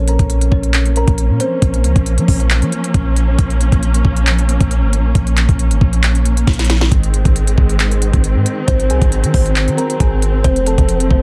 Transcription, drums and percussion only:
0.08 closed hi-hat
0.19 kick, closed hi-hat
0.30 closed hi-hat
0.41 closed hi-hat
0.52 kick
0.63 closed hi-hat
0.74 clap, closed hi-hat
0.86 closed hi-hat
0.96 closed hi-hat
1.08 kick, closed hi-hat
1.18 closed hi-hat
1.40 closed hi-hat
1.62 kick, closed hi-hat
1.74 closed hi-hat
1.84 closed hi-hat
1.96 kick, closed hi-hat
2.06 closed hi-hat
2.18 closed hi-hat
2.28 kick, open hi-hat
2.40 closed hi-hat
2.50 clap, closed hi-hat
2.62 closed hi-hat
2.72 closed hi-hat
2.84 closed hi-hat
2.94 kick, closed hi-hat
3.16 closed hi-hat
3.39 kick, closed hi-hat
3.50 closed hi-hat
3.61 closed hi-hat
3.72 kick, closed hi-hat
3.83 closed hi-hat
3.94 closed hi-hat
4.05 kick
4.16 closed hi-hat
4.27 clap, closed hi-hat
4.39 closed hi-hat
4.49 closed hi-hat
4.61 kick, closed hi-hat
4.71 closed hi-hat
4.93 closed hi-hat
5.15 kick, closed hi-hat
5.27 closed hi-hat
5.37 clap, closed hi-hat
5.49 kick, closed hi-hat
5.59 closed hi-hat
5.71 closed hi-hat
5.81 kick
5.93 closed hi-hat
6.03 clap, closed hi-hat
6.15 closed hi-hat
6.25 closed hi-hat
6.37 closed hi-hat
6.47 kick, snare, closed hi-hat
6.53 closed hi-hat
6.59 snare, closed hi-hat
6.64 closed hi-hat
6.70 snare, closed hi-hat
6.81 snare
6.92 kick, closed hi-hat
7.03 closed hi-hat
7.14 closed hi-hat
7.25 kick, closed hi-hat
7.36 closed hi-hat
7.47 closed hi-hat
7.58 kick
7.69 closed hi-hat
7.80 clap, closed hi-hat
7.91 closed hi-hat
8.02 closed hi-hat
8.13 kick, closed hi-hat
8.24 closed hi-hat
8.46 closed hi-hat
8.68 kick, closed hi-hat
8.80 closed hi-hat
8.90 closed hi-hat
9.02 kick, closed hi-hat
9.12 closed hi-hat
9.24 closed hi-hat
9.34 kick, open hi-hat
9.46 closed hi-hat
9.56 clap, closed hi-hat
9.68 closed hi-hat
9.78 closed hi-hat
9.90 closed hi-hat
10.00 kick, closed hi-hat
10.22 closed hi-hat
10.44 kick, closed hi-hat
10.56 closed hi-hat
10.66 closed hi-hat
10.78 kick, closed hi-hat
10.89 closed hi-hat
11.00 closed hi-hat
11.11 kick

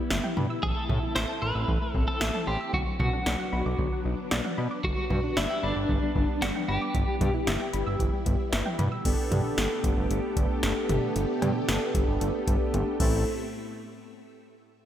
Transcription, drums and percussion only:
0.10 snare
0.24 mid tom
0.37 mid tom
0.63 kick
0.89 kick, mid tom
1.16 snare
1.68 kick
1.95 kick
2.21 snare
2.34 mid tom
2.74 kick
3.00 kick, mid tom
3.26 snare
3.79 kick
4.31 snare
4.45 mid tom
4.84 kick
5.10 kick, mid tom
5.37 snare
5.89 kick
6.16 kick
6.42 snare
6.55 mid tom
6.95 kick, closed hi-hat
7.21 kick, closed hi-hat, mid tom
7.47 snare, closed hi-hat
7.74 closed hi-hat
8.00 kick, closed hi-hat
8.26 kick, closed hi-hat
8.53 snare, closed hi-hat
8.66 mid tom
8.79 closed hi-hat, mid tom
9.05 kick, closed hi-hat, crash
9.32 closed hi-hat, mid tom
9.58 snare, closed hi-hat
9.84 kick, closed hi-hat
10.11 closed hi-hat
10.37 kick, closed hi-hat
10.63 snare, closed hi-hat
10.89 closed hi-hat, mid tom
11.16 closed hi-hat
11.42 closed hi-hat, mid tom, cowbell
11.69 snare, closed hi-hat
11.95 kick, closed hi-hat
12.21 closed hi-hat
12.47 kick, closed hi-hat
12.74 closed hi-hat, high tom
13.00 kick, crash

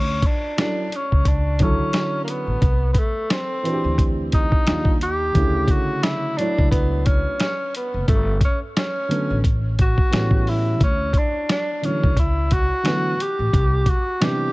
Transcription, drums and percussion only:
0.22 kick, closed hi-hat
0.58 snare, closed hi-hat
0.92 closed hi-hat
1.12 kick
1.25 kick, closed hi-hat
1.59 kick, closed hi-hat
1.93 snare, closed hi-hat
2.28 closed hi-hat
2.62 kick, closed hi-hat
2.95 kick, closed hi-hat
3.30 snare, closed hi-hat
3.65 closed hi-hat
3.98 kick, closed hi-hat
4.32 kick, closed hi-hat
4.52 kick
4.67 snare, closed hi-hat
4.85 kick
5.01 closed hi-hat
5.35 kick, closed hi-hat
5.68 kick, closed hi-hat
6.03 snare, closed hi-hat
6.38 closed hi-hat
6.58 kick
6.71 kick, closed hi-hat
7.06 kick, closed hi-hat
7.40 snare, closed hi-hat
7.75 closed hi-hat
8.08 kick, closed hi-hat
8.41 kick, closed hi-hat
8.77 snare, closed hi-hat
9.11 closed hi-hat
9.44 kick, closed hi-hat
9.79 kick, closed hi-hat
9.98 kick
10.13 snare, closed hi-hat
10.31 kick
10.47 open hi-hat
10.81 kick, closed hi-hat
11.13 kick, closed hi-hat
11.49 snare, closed hi-hat
11.83 closed hi-hat
12.03 kick
12.17 kick, closed hi-hat
12.51 kick, closed hi-hat
12.85 snare, closed hi-hat
13.20 closed hi-hat
13.53 kick, closed hi-hat
13.86 kick, closed hi-hat
14.21 snare, closed hi-hat

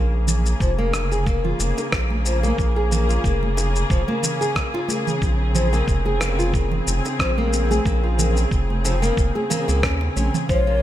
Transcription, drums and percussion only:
0.27 low conga, shaker
0.46 shaker
0.60 kick, shaker
0.79 high conga
0.94 cross-stick, high bongo, shaker
1.12 shaker
1.26 kick, shaker
1.45 low conga
1.60 shaker
1.78 high bongo, shaker
1.92 kick, cross-stick, shaker
2.10 high conga
2.26 shaker
2.44 high conga, shaker
2.58 kick, shaker
2.92 low conga, shaker
3.10 shaker
3.24 kick, shaker
3.43 high conga
3.57 high bongo, shaker
3.76 shaker
3.90 kick, shaker
4.08 high conga
4.23 high bongo, low conga, shaker
4.42 shaker
4.56 kick, cross-stick, shaker
4.75 high bongo
4.88 high conga, shaker
5.07 low conga, shaker
5.22 kick, shaker
5.55 low conga, shaker
5.73 shaker
5.88 kick, shaker
6.05 high conga
6.21 cross-stick, high bongo, shaker
6.39 shaker
6.54 kick, shaker
6.72 low conga
6.87 shaker
7.05 high bongo, shaker
7.19 kick, cross-stick, shaker
7.38 high conga
7.53 shaker
7.71 high conga, shaker
7.85 kick, shaker
8.19 low conga, shaker
8.37 shaker
8.51 kick, shaker
8.70 high conga
8.85 high bongo, shaker
9.03 shaker
9.17 kick, shaker
9.36 high conga
9.50 high bongo, low conga, shaker
9.69 shaker
9.83 kick, cross-stick, shaker
10.01 high bongo
10.16 high conga, shaker
10.34 low conga, shaker
10.49 kick, shaker

